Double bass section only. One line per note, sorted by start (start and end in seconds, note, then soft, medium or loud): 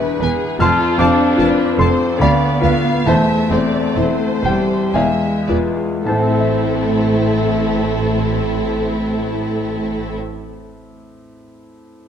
0.21 0.29 E1 soft
0.59 0.67 F1 medium
0.99 1.07 F1 soft
1.39 1.47 F1 soft
1.79 1.87 F1 medium
2.21 2.29 D2 medium
2.63 2.71 D2 soft
3.06 3.14 E1 medium
3.51 3.59 E1 soft
3.96 4.04 E1 soft
4.43 4.51 E1 soft
4.94 5.02 E1 soft
5.49 5.57 E1 soft
6.06 10.15 A1 soft